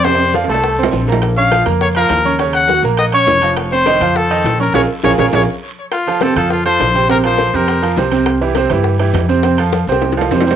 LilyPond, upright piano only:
\new Staff \with { instrumentName = "Upright piano" } { \time 4/4 \key bes \minor \tempo 4 = 205 <c c' c''>4 <f f' f''>8 <a a' a''>4 <c' c'' c'''>4 <bes bes' bes''>8~ | <bes bes' bes''>8 <des' des'' des'''>8 <f f' f''>8 <bes bes' bes''>4 <f f' f''>4 <des' des'' des'''>8 | <des des' des''>4 <ges ges' ges''>8 <bes bes' bes''>4 <des' des'' des'''>4 <f f' f''>8~ | <f f' f''>8 <c' c'' c'''>8 <ees ees' ees''>8 <f f' f''>4 <ees ees' ees''>4 <des' des'' des'''>8 |
<f' aes' bes'>8 r8 <f' aes' bes'>8 <f' aes' bes'>8 <f' aes' bes'>8 r4. | \key f \phrygian r8 <f f' a'>8 <c c' c''>8 <f f' a'>4 <f f' a'>4 <c c' c''>8 | <c c' c''>8 <f f' bes'>4 <c c' c''>4 <f f' bes'>8 <c c' c''>8 <c c' c''>8~ | <c c' c''>8 <e e' g'>8 <c c' c''>8 <e e' g'>4 <e e' g'>4 <c c' c''>8 |
<c c' c''>8 <f f' a'>4 <c c' c''>4 <f f' a'>8 <c c' c''>8 <c c' c''>8 | }